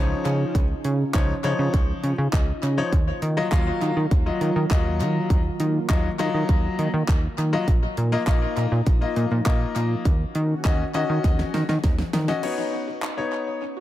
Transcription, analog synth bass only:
Already playing: C#2
0.25 C#3
0.55 C#2
0.85 C#3
1.14 C#2
1.44 C#3
1.59 C#3
1.74 C#2
2.03 C#3
2.18 C#3
2.33 C#2
2.63 C#3
2.93 D#2
3.22 D#3
3.52 D#2
3.82 D#3
3.97 D#3
4.11 D#2
4.41 D#3
4.56 D#3
4.71 D#2
5.00 D#3
5.30 D#2
5.60 D#3
5.90 D#2
6.19 D#3
6.34 D#3
6.49 D#2
6.79 D#3
6.94 D#3
7.08 D#2
7.38 D#3
7.68 A#1
7.98 A#2
8.27 A#1
8.57 A#2
8.72 A#2
8.87 A#1
9.16 A#2
9.31 A#2
9.46 A#1
9.76 A#2
10.05 D#2
10.35 D#3
10.65 D#2
10.95 D#3
11.10 D#3
11.24 D#2
11.54 D#3
11.69 D#3
11.84 D#2
12.13 D#3

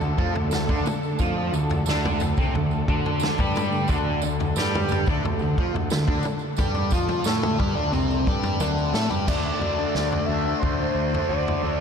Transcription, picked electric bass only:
0.02 D2
0.18 F2
0.35 D2
0.53 D2
0.69 D2
0.87 muted picked electric bass stroke
1.19 F2
1.52 D2
1.87 D2
2.20 D2
2.38 C2
2.55 D2
2.88 D2
3.39 G2
3.89 D2
4.23 D2
4.57 G2
5.07 D2
5.24 D2
5.40 D2
5.58 F2
5.74 D2
5.91 D2
6.08 D2
6.25 muted picked electric bass stroke
6.59 G2
6.92 F2
7.26 A2
7.59 G2
7.75 D2
7.92 C2
8.27 G2
8.59 D2
8.93 A2
9.11 G2
9.28 D2
9.60 D2
9.95 D2
10.28 D2
10.63 D2
10.95 D2
11.29 D2
11.63 D2

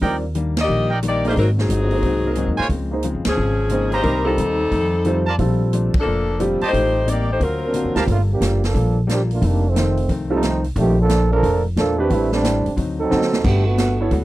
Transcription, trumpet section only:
0.02 D#4 A#4 D5 G5
0.90 D#4 A#4 D5 G5
2.58 F4 C5 C#5 G#5
3.92 G4 C5 D#5 A#5
5.27 F4 A#4 D5 A5
6.61 G4 C5 D#5 A5
7.95 G4 A#4 F5 A5

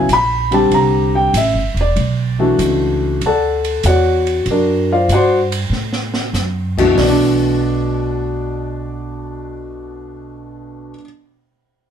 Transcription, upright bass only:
0.09 A#1
0.71 C2
1.34 A1
1.54 G1
1.74 E1
1.96 B1
2.59 C#2
3.21 D2
3.84 E2
4.46 F#2
5.08 G2
5.70 A2
6.33 F#2
6.96 B1

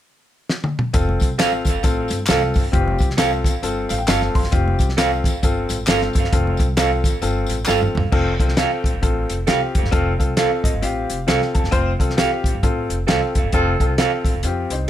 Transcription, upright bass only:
0.94 F1
1.21 C2
1.38 A1
1.65 G1
1.84 A1
2.11 G1
2.29 C2
2.56 G1
2.73 F1
3.45 A1
3.63 G1
3.90 A1
4.08 G1
4.36 G1
4.53 F1
4.80 C2
5.24 A1
5.43 G1
5.70 A1
5.87 G1
6.16 G1
6.33 F1
6.60 C2
7.04 A1
7.22 G1
7.49 A1
7.67 G1
7.95 G1
8.13 F1
8.40 C2
8.84 A1
8.94 G1
9.03 A1
9.30 F1
9.48 C2
9.75 F1
9.83 G1
9.93 F1
10.19 C2
10.64 A1
10.74 G1
10.82 A1
11.10 F1
11.28 C2
11.55 F1
11.64 G1
11.73 F1
12.00 C2
12.44 A1
12.55 G1
12.63 A1
12.89 F1
13.07 C2
13.35 F1
13.43 G1
13.53 F1
13.80 C2
14.25 A1
14.34 F1
14.43 F2
14.70 C2

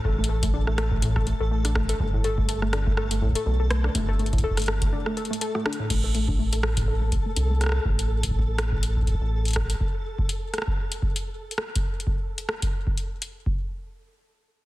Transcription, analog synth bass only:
0.05 A1
1.40 A1
2.00 G1
3.46 B1
3.95 G1
5.90 A1
7.36 C2
7.85 A1
9.21 A1

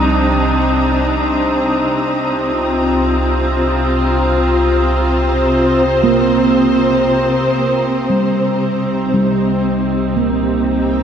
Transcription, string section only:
Already playing: C3 C4 D4 D#4 A#5
1.91 C3
2.42 F4
3.89 C5
8.86 D#4
10.07 G4
10.74 G5

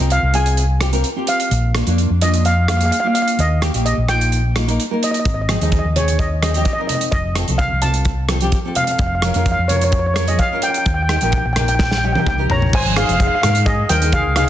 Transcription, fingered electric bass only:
0.00 C2
0.22 C2
1.51 A#1
1.87 F2
2.10 F2
3.39 D#2
3.74 A#1
3.97 A#1
5.26 G#1
5.61 D#2
5.85 D#2
7.12 F1
7.49 C2
7.72 C2
8.99 F1
9.35 F2
9.59 F2
10.86 D#2
11.22 A#1
11.45 A#1
12.27 C2
12.50 A#1
12.74 G#1
13.08 F1
13.43 G#2
13.90 D#2
14.26 C#2

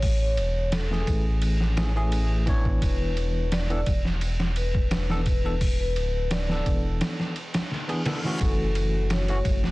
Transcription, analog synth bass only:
Already playing: A1
0.38 E1
1.08 A1
2.82 E1
3.87 E1
5.96 D1
6.66 E1
8.41 F#1
9.45 F#1

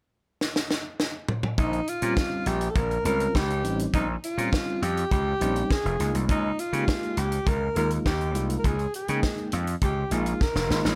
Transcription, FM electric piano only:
2.02 G3 C4 C#4 F4
3.04 G3 C4 C#4 F4
3.64 G3 C4 C#4 D#4
4.37 G3 C4 C#4 F4
5.40 G3 C4 C#4 D#4
5.99 G#3 A#3 D#4 F4
6.73 G#3 A#3 D#4 G4
7.76 G#3 A#3 D#4 F4
8.35 G#3 A#3 D#4 F4
9.08 G#3 A#3 D#4 G5
10.11 G#3 A#3 D#4 G#4
10.70 G#3 A#3 D#4 F4

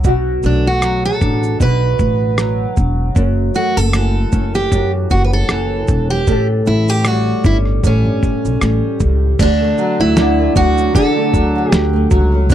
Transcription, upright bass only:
0.05 B1
0.44 B1
1.21 A1
1.61 B1
1.99 A1
2.77 E1
3.16 F#1
3.77 F#1
4.33 F#1
4.72 F#2
5.11 F#1
5.50 F#1
5.89 E1
6.27 A1
6.67 A1
7.44 G1
7.84 A1
8.05 G1
8.45 B1
8.62 A1
9.00 C#2
9.39 D2
10.00 D2
10.56 D2
10.95 D3
11.34 D2
11.72 D2
12.11 C#2
12.50 B1

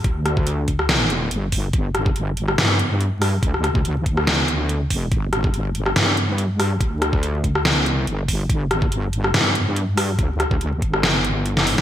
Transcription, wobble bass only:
0.04 D2
1.31 G1
1.74 G1
2.58 G2
3.43 D2
4.06 D2
4.90 F1
5.12 G1
5.96 G2
6.81 D2
7.69 C#2
7.94 C2
8.07 G1
8.49 G1
9.34 G2
10.19 D2
10.82 G1

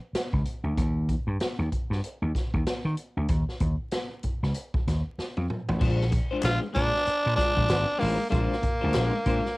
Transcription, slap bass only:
0.13 muted slap bass stroke
0.33 C#2
0.64 D2
0.78 D#2
1.27 G2
1.40 muted slap bass stroke
1.59 D#2
1.90 G2
2.22 D#2
2.54 D#2
2.85 D#3
3.17 D2
3.29 D#2
3.60 D#2
4.24 muted slap bass stroke
4.43 C#2
4.74 muted slap bass stroke
4.87 D#2
5.18 muted slap bass stroke
5.37 F2
5.69 A1
5.81 A#1
6.43 A#1
6.76 A#2
7.07 muted slap bass stroke
7.26 A#2
7.57 A#1
7.70 G#1
8.02 A1
8.32 A#1
8.84 D2
8.96 A#1
9.26 A#2

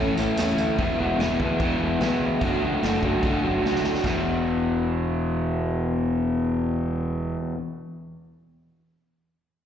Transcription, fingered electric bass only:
Already playing: A1
0.16 A1
0.37 E2
0.57 D2
0.78 E1
0.97 E1
1.19 E1
1.40 D2
1.60 E1
1.81 E1
2.00 B1
2.20 D2
2.41 F#1
2.62 C#2
2.82 F#1
3.02 F#1
3.23 F#1
3.42 F#1
3.63 C#2
3.82 D2
4.04 E1

